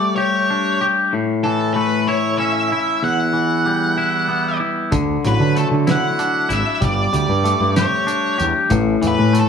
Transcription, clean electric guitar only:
0.00 1.12 G3 medium
0.00 1.13 A3 medium
0.18 0.80 G4 medium
0.50 1.13 D4 medium
0.81 1.13 G4 medium
1.13 2.71 A2 medium
1.45 3.33 E3 medium
1.76 3.02 A3 medium
2.09 2.72 E4 medium
2.40 3.03 C#4 medium
2.72 3.97 E4 medium
3.03 4.61 E2 medium
3.33 4.92 E3 medium
3.66 4.92 G3 medium
3.98 4.59 E4 medium
4.28 4.92 B3 medium
4.60 4.92 E4 medium
4.92 6.50 D3 medium
5.25 6.80 F#3 medium
5.56 6.84 A3 medium
5.87 6.48 E4 medium
6.19 6.82 D4 medium
6.49 6.81 E4 medium
6.81 7.12 G3 medium
7.13 8.71 G3 medium
7.44 9.33 A3 medium
7.76 8.37 G4 medium
8.07 8.71 D4 medium
8.38 8.70 G4 medium
8.70 9.49 A2 medium
9.02 9.49 E3 medium
9.33 9.49 A3 medium

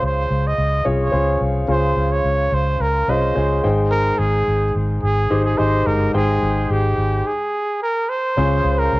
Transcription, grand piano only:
0.00 0.26 C#3 soft
0.00 0.47 C#4 medium
0.00 0.47 F4 medium
0.00 0.47 G#4 medium
0.00 0.47 C5 medium
0.85 1.10 C#4 medium
0.85 1.10 F4 soft
0.85 1.10 G#4 soft
0.85 1.10 C#5 medium
1.12 1.63 C#4 medium
1.12 1.63 F4 soft
1.12 1.63 G#4 medium
1.12 1.63 C5 medium
1.68 2.48 C#3 medium
1.68 2.69 C#4 medium
1.68 2.69 F4 medium
1.68 2.69 G#4 soft
3.09 3.34 C#4 medium
3.09 3.34 F4 medium
3.09 3.34 G#4 medium
3.09 3.34 D#5 medium
3.35 3.64 C#4 medium
3.35 3.64 F4 soft
3.35 3.63 G#4 medium
3.35 3.63 C5 medium
3.64 4.43 G#2 medium
3.64 4.64 D#4 medium
3.64 4.64 G#4 medium
3.64 4.64 C5 medium
3.64 4.64 G5 medium
5.30 5.56 D#4 medium
5.30 5.56 G4 medium
5.30 5.56 G#4 medium
5.30 5.56 C5 medium
5.58 6.09 D#4 medium
5.58 6.09 G4 medium
5.58 6.09 G#4 medium
5.58 6.09 D#5 medium
5.87 6.67 G#2 soft
6.15 7.15 G#3 medium
6.15 7.15 D#4 medium
6.15 7.15 C5 medium
6.15 7.15 G5 medium
8.37 9.00 C#3 medium
8.37 9.00 C#4 medium
8.37 9.00 F4 medium
8.37 9.00 G#4 medium
8.37 9.00 C5 medium

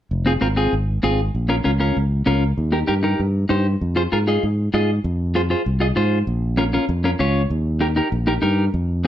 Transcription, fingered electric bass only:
0.11 0.36 F1 medium
0.42 0.67 G#1 medium
0.73 0.97 G#1 medium
1.04 1.28 G#1 medium
1.35 1.59 A#1 medium
1.65 1.90 C#2 medium
1.96 2.21 C#2 medium
2.27 2.52 C#2 medium
2.58 2.82 D#2 medium
2.89 3.13 G2 medium
3.19 3.44 G2 medium
3.50 3.75 G2 medium
3.81 4.06 F2 medium
4.12 4.37 G#2 medium
4.43 4.68 G#2 medium
4.74 4.98 G#2 medium
5.04 5.54 F2 medium
5.66 5.91 C2 medium
5.97 6.21 G#2 medium
6.27 6.76 A#1 medium
6.89 7.13 F2 loud
7.20 7.44 C#2 loud
7.50 8.00 D#2 medium
8.12 8.37 A#1 medium
8.43 8.68 G2 loud
8.74 9.07 F2 loud

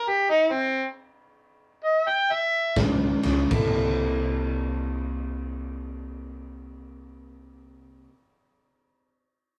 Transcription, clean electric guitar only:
2.77 3.19 C#3 medium
2.77 3.19 G#3 medium
3.23 3.49 C#3 medium
3.23 3.49 G#3 medium
3.50 8.07 C3 medium
3.50 8.08 A#3 loud
3.50 8.08 E4 loud
3.50 8.09 A4 loud

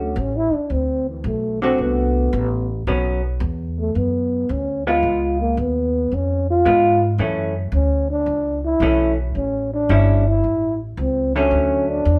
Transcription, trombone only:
0.02 0.22 A3 medium
0.20 0.38 C#4 medium
0.37 0.56 E4 loud
0.55 0.74 D4 medium
0.73 1.09 C4 medium
1.10 1.26 E3 soft
1.27 1.63 A3 medium
1.63 1.82 C4 medium
1.81 2.71 B3 medium
3.79 3.99 A3 medium
3.98 4.52 B3 medium
4.51 4.87 C#4 medium
4.87 5.41 F4 medium
5.41 5.62 A#3 medium
5.60 6.16 B3 medium
6.15 6.50 C#4 medium
6.51 7.16 F4 medium
7.75 8.08 C#4 medium
8.11 8.61 D4 medium
8.66 9.15 E4 loud
9.37 9.70 C#4 medium
9.74 10.23 D4 medium
10.28 10.78 E4 medium
11.00 11.33 C4 medium
11.36 11.91 C#4 medium
11.90 12.19 D4 medium

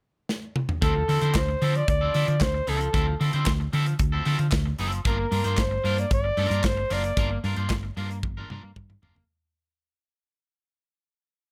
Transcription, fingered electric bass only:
0.82 1.01 D2 medium
1.09 1.18 D3 loud
1.22 1.36 D3 medium
1.35 1.54 D2 medium
1.62 1.81 D3 loud
1.88 2.08 D2 medium
2.15 2.24 D3 medium
2.28 2.42 D3 loud
2.41 2.60 D2 medium
2.68 2.87 C#2 medium
2.94 3.13 D2 loud
3.21 3.30 D3 loud
3.34 3.43 D3 medium
3.47 3.66 D2 medium
3.73 3.93 D3 loud
4.00 4.19 D2 loud
4.26 4.36 D3 medium
4.39 4.49 D3 medium
4.52 4.72 D2 medium
4.79 4.98 F#1 medium
5.05 5.25 G1 loud
5.32 5.41 G2 loud
5.45 5.55 G2 loud
5.58 5.77 G1 medium
5.84 6.04 G2 medium
6.11 6.30 G1 medium
6.37 6.47 G2 medium
6.50 6.60 G2 loud
6.64 6.83 G1 medium
6.91 7.10 F#1 medium
7.17 7.36 G1 loud
7.44 7.53 G2 loud
7.57 7.67 G2 medium
7.70 7.89 G1 loud
7.97 8.25 G2 loud
8.23 8.43 G1 medium
8.51 8.60 G2 loud
8.63 8.73 G2 medium
8.76 8.96 G2 loud
9.03 9.22 F#1 medium

